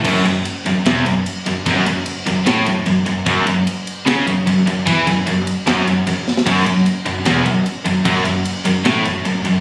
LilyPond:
<<
  \new Staff \with { instrumentName = "Distorted electric guitar" } { \clef bass \time 4/4 \key fis \minor \tempo 4 = 150 fis,8 fis,8 r8 fis,8 e,8 fis,8 r8 fis,8 | fis,8 fis,8 r8 fis,8 a,8 fis,8 fis,8 fis,8 | fis,8 fis,8 r4 cis8 fis,8 fis,8 fis,8 | e8 fis,8 fis,8 r8 fis,8 fis,8 fis,8 r8 |
fis,8 fis,8 r8 fis,8 e,8 fis,8 r8 fis,8 | fis,8 fis,8 r8 fis,8 a,8 fis,8 fis,8 fis,8 | }
  \new Staff \with { instrumentName = "Distorted electric guitar" } { \clef bass \time 4/4 \key fis \minor fis,8 fis,8 r8 fis,8 e,8 fis,8 r8 fis,8 | fis,8 fis,8 r8 fis,8 a,8 fis,8 fis,8 fis,8 | fis,8 fis,8 r4 cis8 fis,8 fis,8 fis,8 | e8 fis,8 fis,8 r8 fis,8 fis,8 fis,8 r8 |
fis,8 fis,8 r8 fis,8 e,8 fis,8 r8 fis,8 | fis,8 fis,8 r8 fis,8 a,8 fis,8 fis,8 fis,8 | }
  \new Staff \with { instrumentName = "Overdriven electric guitar" } { \clef bass \time 4/4 \key fis \minor fis,8 fis,8 r8 fis,8 e,8 fis,8 r8 fis,8 | fis,8 fis,8 r8 fis,8 a,8 fis,8 fis,8 fis,8 | fis,8 fis,8 r4 cis8 fis,8 fis,8 fis,8 | e8 fis,8 fis,8 r8 fis,8 fis,8 fis,8 r8 |
fis,8 fis,8 r8 fis,8 e,8 fis,8 r8 fis,8 | fis,8 fis,8 r8 fis,8 a,8 fis,8 fis,8 fis,8 | }
  \new Staff \with { instrumentName = "Upright bass" } { \clef bass \time 4/4 \key fis \minor fis,,8 fis,,8 r8 fis,,8 e,,8 fis,,8 r8 fis,,8 | fis,,8 fis,,8 r8 fis,,8 a,,8 fis,,8 fis,,8 fis,,8 | fis,,8 fis,,8 r4 cis,8 fis,,8 fis,,8 fis,,8 | e,8 fis,,8 fis,,8 r8 fis,,8 fis,,8 fis,,8 r8 |
fis,,8 fis,,8 r8 fis,,8 e,,8 fis,,8 r8 fis,,8 | fis,,8 fis,,8 r8 fis,,8 a,,8 fis,,8 fis,,8 fis,,8 | }
  \new DrumStaff \with { instrumentName = "Drums" } \drummode { \time 4/4 <cymc bd>8 cymr8 cymr8 cymr8 <cymr sn>8 cymr8 cymr8 cymr8 | <bd cymr>8 cymr8 cymr8 cymr8 <cymr sn>8 cymr8 cymr8 cymr8 | <bd cymr>8 cymr8 cymr8 cymr8 <cymr sn>8 cymr8 cymr8 cymr8 | <bd cymr>8 cymr8 cymr8 cymr8 <cymr sn>8 cymr8 cymr8 sn16 sn16 |
<cymc bd cymr>8 cymr8 cymr8 cymr8 <cymr sn>8 cymr8 cymr8 cymr8 | <bd cymr>8 cymr8 cymr8 cymr8 <cymr sn>8 cymr8 cymr8 cymr8 | }
>>